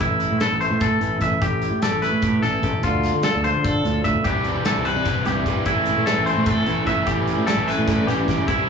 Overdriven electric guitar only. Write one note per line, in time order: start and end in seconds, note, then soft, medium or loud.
4.26 4.66 C3 medium
4.26 4.66 E3 medium
4.26 4.48 G3 medium
4.26 4.47 C4 loud
4.26 4.46 E4 medium
4.46 4.66 G3 medium
4.46 4.68 C4 medium
4.46 4.68 E4 medium
4.66 5.07 E3 medium
4.66 4.87 G3 medium
4.66 4.86 C4 medium
4.66 4.86 E4 medium
4.86 5.06 G3 soft
4.86 5.07 C4 medium
4.86 5.08 E4 medium
5.06 5.46 C3 medium
5.06 5.46 E3 medium
5.06 5.28 G3 medium
5.06 5.27 C4 medium
5.06 5.26 E4 medium
5.26 5.46 G3 medium
5.26 5.47 C4 medium
5.26 5.48 E4 medium
5.46 5.66 E3 medium
5.46 5.66 G3 medium
5.46 5.66 C4 medium
5.46 5.69 E4 medium
5.67 6.45 A2 medium
5.67 6.06 E3 loud
5.67 5.89 A3 medium
5.67 5.87 C4 loud
5.67 5.86 E4 loud
5.87 6.07 A3 medium
5.87 6.07 C4 medium
5.87 6.08 E4 medium
6.06 6.46 E3 medium
6.06 6.29 A3 medium
6.06 6.27 C4 medium
6.06 6.26 E4 medium
6.27 6.47 A3 medium
6.27 6.46 C4 medium
6.27 6.48 E4 medium
6.46 6.86 A2 medium
6.46 6.87 E3 medium
6.46 6.68 A3 loud
6.46 6.66 C4 medium
6.46 6.66 E4 loud
6.66 6.87 A3 medium
6.66 6.87 C4 medium
6.66 6.89 E4 medium
6.87 7.07 E3 medium
6.87 7.08 A3 medium
6.87 7.06 C4 medium
6.87 7.09 E4 medium
7.07 7.47 A2 medium
7.07 7.46 E3 loud
7.07 7.28 G3 loud
7.07 7.27 C#4 medium
7.07 7.26 E4 loud
7.27 7.47 G3 medium
7.27 7.48 C#4 medium
7.27 7.49 E4 medium
7.47 7.86 E3 medium
7.47 7.69 G3 medium
7.47 7.68 C#4 medium
7.47 7.66 E4 medium
7.67 7.88 G3 medium
7.67 7.87 C#4 medium
7.67 7.88 E4 medium
7.87 8.27 A2 medium
7.87 8.27 E3 medium
7.87 8.09 G3 loud
7.87 8.08 C#4 medium
7.87 8.06 E4 loud
8.07 8.28 G3 medium
8.07 8.28 C#4 medium
8.07 8.29 E4 medium
8.28 8.47 E3 medium
8.28 8.48 G3 medium
8.28 8.48 C#4 medium
8.28 8.48 E4 medium
8.48 8.69 C3 loud
8.48 8.69 G3 medium
8.48 8.68 C4 loud
8.48 8.67 E4 medium